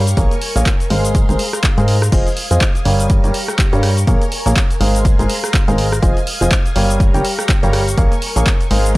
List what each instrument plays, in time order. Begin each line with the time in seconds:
Already playing: analog synth bass G2, string machine G4 F5 A#5 C#6
0.07 closed hi-hat, shaker
0.17 analog synth bass A#1, grand piano A#3 G#4 A#4 C#5 F5, string machine A#4 G#5, kick, closed hi-hat, shaker
0.31 closed hi-hat, shaker
0.41 open hi-hat
0.56 analog synth bass A#1, grand piano A#3 G#4 A#4 C#5 F5, closed hi-hat, shaker
0.66 kick, clap, closed hi-hat, shaker
0.80 closed hi-hat, shaker
0.90 analog synth bass G#1, grand piano G#3 G#4 A#4 C5 F5, string machine G#4 F5 A#5 C6, open hi-hat
1.05 closed hi-hat, shaker
1.15 kick, closed hi-hat, shaker
1.29 analog synth bass G#1, grand piano G#3 G#4 A#4 C5 G#5, closed hi-hat, shaker
1.39 open hi-hat
1.53 cross-stick, closed hi-hat, shaker
1.63 kick, clap, closed hi-hat, shaker
1.78 analog synth bass G#2, grand piano G#3 G#4 A#4 C5 F5, closed hi-hat, shaker
1.88 open hi-hat
2.02 cross-stick, closed hi-hat, shaker
2.12 analog synth bass F1, grand piano F3 G#4 C5 D#5 F5, string machine D#6 G#6, kick, closed hi-hat, crash, shaker
2.27 closed hi-hat, shaker
2.37 open hi-hat
2.51 analog synth bass F2, grand piano F3 G#4 C5 D#5 F5, closed hi-hat, shaker
2.61 kick, clap, closed hi-hat, shaker
2.75 closed hi-hat, shaker
2.85 analog synth bass G1, grand piano G3 G4 A#4 C#5 F5, open hi-hat
3.00 closed hi-hat, shaker
3.10 string machine G4 A#5 C#6, kick, closed hi-hat, shaker
3.24 analog synth bass G1, grand piano G3 G4 A#4 C#5 G5, closed hi-hat, shaker
3.34 open hi-hat
3.48 cross-stick, closed hi-hat, shaker
3.59 kick, clap, closed hi-hat, shaker
3.73 analog synth bass G2, grand piano G3 G4 A#4 C#5 F5, closed hi-hat, shaker
3.83 cross-stick, open hi-hat
3.97 closed hi-hat, shaker
4.07 analog synth bass A#1, grand piano A#3 G#4 A#4 C#5 F5, string machine A#4 G#5, kick, closed hi-hat, shaker
4.22 closed hi-hat, shaker
4.32 open hi-hat
4.46 analog synth bass A#1, grand piano A#3 G#4 A#4 C#5 F5, closed hi-hat, shaker
4.56 kick, clap, closed hi-hat, shaker
4.70 closed hi-hat, shaker
4.81 analog synth bass G#1, grand piano G#3 G#4 A#4 C5 F5, string machine G#4 F5 A#5 C6, open hi-hat
4.95 closed hi-hat, shaker
5.05 kick, closed hi-hat, shaker
5.19 analog synth bass G#1, grand piano G#3 G#4 A#4 C5 G#5, closed hi-hat, shaker
5.29 open hi-hat
5.44 cross-stick, closed hi-hat, shaker
5.54 kick, clap, closed hi-hat, shaker
5.68 analog synth bass G#1, grand piano G#3 G#4 A#4 C5 F5, closed hi-hat, shaker
5.78 open hi-hat
5.92 cross-stick, closed hi-hat, shaker
6.02 analog synth bass F1, grand piano F3 G#4 C5 D#5 F5, string machine D#6 G#6, kick, closed hi-hat, shaker
6.17 closed hi-hat, shaker
6.27 open hi-hat
6.41 analog synth bass F1, grand piano F3 G#4 C5 D#5 F5, closed hi-hat, shaker
6.51 kick, clap, closed hi-hat, shaker
6.66 closed hi-hat, shaker
6.76 analog synth bass G1, grand piano G3 G4 A#4 C#5 F5, open hi-hat
6.90 closed hi-hat, shaker
7.00 string machine G4 A#5 C#6, kick, closed hi-hat, shaker
7.14 analog synth bass G1, grand piano G3 G4 A#4 C#5 G5, closed hi-hat, shaker
7.25 open hi-hat
7.39 cross-stick, shaker
7.49 kick, clap, closed hi-hat, shaker
7.63 analog synth bass G1, grand piano G3 G4 A#4 C#5 F5, closed hi-hat, shaker
7.73 cross-stick, open hi-hat
7.87 closed hi-hat, shaker
7.97 analog synth bass A#1, grand piano A#3 G#4 A#4 C#5 F5, string machine A#4 G#5, kick, closed hi-hat, shaker
8.12 closed hi-hat, shaker
8.22 open hi-hat
8.36 analog synth bass A#1, grand piano A#3 G#4 A#4 C#5 F5, closed hi-hat, shaker
8.46 kick, clap, closed hi-hat, shaker
8.61 closed hi-hat, shaker
8.71 analog synth bass G#1, grand piano G#3 G#4 A#4 C5 F5, string machine G#4 F5 A#5 C6, open hi-hat
8.85 closed hi-hat, shaker